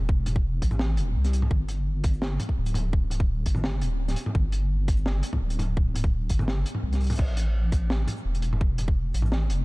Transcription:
Already playing: E1
0.09 kick
0.26 closed hi-hat, mid tom
0.36 kick
0.62 A1, kick, closed hi-hat
0.70 mid tom, shaker
0.79 snare
0.97 E1, closed hi-hat
1.15 C2
1.25 snare, closed hi-hat
1.33 closed hi-hat, shaker
1.42 mid tom
1.51 G1, kick
1.69 closed hi-hat
2.04 G1, kick, closed hi-hat
2.13 shaker
2.22 snare
2.40 closed hi-hat, mid tom
2.49 kick
2.57 D1
2.66 closed hi-hat, shaker
2.74 closed hi-hat, mid tom
2.93 kick
3.10 closed hi-hat, mid tom
3.20 kick
3.46 G1, kick, closed hi-hat
3.55 mid tom, shaker
3.64 snare
3.81 D1, closed hi-hat
4.08 snare, closed hi-hat
4.16 closed hi-hat, shaker
4.26 mid tom
4.35 G1, kick
4.52 closed hi-hat
4.88 G1, kick, closed hi-hat
4.97 shaker
5.06 snare
5.23 closed hi-hat
5.33 kick, mid tom
5.41 D1
5.50 closed hi-hat, shaker
5.59 closed hi-hat, mid tom
5.77 kick
5.95 closed hi-hat, mid tom
6.04 kick
6.29 G1, kick, closed hi-hat
6.39 mid tom, shaker
6.48 snare
6.66 closed hi-hat
6.75 mid tom
6.83 C2
6.93 snare, closed hi-hat
7.00 closed hi-hat, shaker
7.04 closed hi-hat
7.07 closed hi-hat
7.10 closed hi-hat, mid tom
7.12 closed hi-hat
7.15 A1, kick, closed hi-hat, crash
7.37 closed hi-hat
7.72 A1, kick, closed hi-hat, shaker
7.90 snare
8.07 closed hi-hat, mid tom
8.17 shaker
8.25 E1
8.35 closed hi-hat
8.42 closed hi-hat
8.53 mid tom
8.61 kick
8.78 closed hi-hat, mid tom
8.88 kick
9.13 A1, closed hi-hat, shaker
9.19 mid tom, shaker
9.26 shaker
9.32 snare
9.50 E1, closed hi-hat

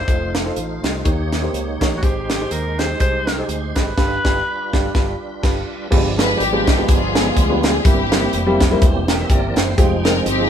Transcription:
Already playing: C5
0.07 F1 A3 D#4 F4 A4 C5, kick, closed hi-hat
0.35 snare, closed hi-hat
0.45 D#4 F4 A4 C5
0.56 A1 A4 F5, closed hi-hat
0.83 C2 G4 D#5, snare, closed hi-hat
1.04 D#2 D#3 A#3 D#4 G4 A#4 C5 C#5, kick, closed hi-hat
1.11 C#5
1.32 snare, closed hi-hat
1.42 D#4 G4 A#4 C5
1.53 C#2, closed hi-hat
1.80 A1 D#4 G4 A#4 C#5, kick, snare, closed hi-hat
1.97 F#4
2.02 G#1 G#2 G#3 D#4 G4 G#4 C5, kick, closed hi-hat
2.30 snare, closed hi-hat
2.40 D#4 G4 G#4 C5
2.51 D#2 A#4, closed hi-hat
2.78 D#4 G4 G#4 C5 D#5, snare, closed hi-hat
2.99 C2 D#4 G4 G#4 C5, kick, closed hi-hat
3.27 snare, closed hi-hat
3.38 D#4 G4 G#4 C5
3.48 D2, closed hi-hat
3.76 G#1 D#4 G4 G#4 B4 C5, kick, snare, closed hi-hat
3.97 G1 G2 G3 D4 F4 G4 B4, kick, snare, crash
4.24 G1 D4 F4 G4 B4, kick, snare
4.73 G1 D4 F4 G4 D5, kick, snare
4.95 G1 D4 F4 G4 B4, kick, snare
5.43 G1 D4 F4 G4 B4, kick, snare, crash
5.90 G1 G2 F3 G#3 B3 D4 F4 G4, kick, crash
5.97 G3
6.17 G#3 B3 D4 F4 G#4 B4, snare, closed hi-hat
6.40 G#1 B3 D4 G4, closed hi-hat
6.52 G#3 B3 D4 F4 G4
6.67 kick, snare, closed hi-hat
6.77 G#3 B3 D4 F4 G4
6.88 G1 B3 F4 G#4, kick, closed hi-hat
7.15 G#3 B3 D4 F4 G#4, snare, closed hi-hat
7.36 D2, kick, closed hi-hat
7.49 G#3 B3 D4 F4 G4
7.63 G#4, snare, closed hi-hat
7.85 G1 G2 E3 G3 A#3 C4 E4 G4, kick, closed hi-hat
8.11 G3 A#3 C4 E4 A#4, snare, closed hi-hat
8.33 F1, closed hi-hat
8.47 G3 A#3 C4 E4 G4
8.60 kick, snare, closed hi-hat
8.71 G3 A#3 C4 E4 A#4
8.81 E1 E3 G3 A#3 C4 G4, kick, closed hi-hat
9.08 G4 A#4 G5 A#5, snare, closed hi-hat
9.14 E5
9.29 G1 G4 A#4 D5 E5 G5, kick, closed hi-hat
9.56 F#1 E4 C5 G5, snare, closed hi-hat
9.78 F1 F3 G#3 C4 D#4 F4 G4 G5, kick, closed hi-hat
10.04 G#3 C4 D#4 F4 G#4 A#4, snare, closed hi-hat
10.26 G1 C4 D#4 G4, closed hi-hat
10.39 G#3 C4 D#4 F4 G#4

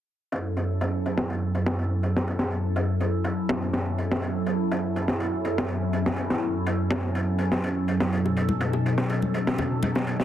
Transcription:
0.32 F#2 F#3 C#4 E4 A4, closed hi-hat
0.57 closed hi-hat
0.81 closed hi-hat
1.06 closed hi-hat
1.17 snare
1.30 closed hi-hat
1.55 closed hi-hat
1.66 snare
1.79 closed hi-hat
2.03 closed hi-hat
2.16 snare
2.28 closed hi-hat
2.39 snare
2.51 closed hi-hat
2.76 closed hi-hat
3.00 closed hi-hat
3.24 closed hi-hat
3.49 snare
3.62 closed hi-hat
3.73 snare
3.98 closed hi-hat
4.11 snare
4.22 closed hi-hat
4.46 closed hi-hat
4.72 closed hi-hat
4.96 closed hi-hat
5.08 snare
5.20 closed hi-hat
5.45 closed hi-hat
5.58 snare
5.68 closed hi-hat
5.93 closed hi-hat
6.06 snare
6.16 closed hi-hat
6.30 snare
6.67 closed hi-hat
6.90 snare, closed hi-hat
7.15 closed hi-hat
7.38 closed hi-hat
7.52 snare
7.64 closed hi-hat
7.88 closed hi-hat
8.00 snare
8.13 B2 D#4 A4, closed hi-hat
8.26 high bongo
8.37 closed hi-hat
8.49 high conga
8.61 closed hi-hat
8.73 high bongo
8.86 closed hi-hat
8.98 snare
9.10 closed hi-hat, high bongo
9.22 high conga
9.34 closed hi-hat
9.47 snare
9.58 closed hi-hat, high bongo, low conga
9.83 closed hi-hat, high conga
9.95 snare, high bongo
10.07 closed hi-hat
10.20 snare

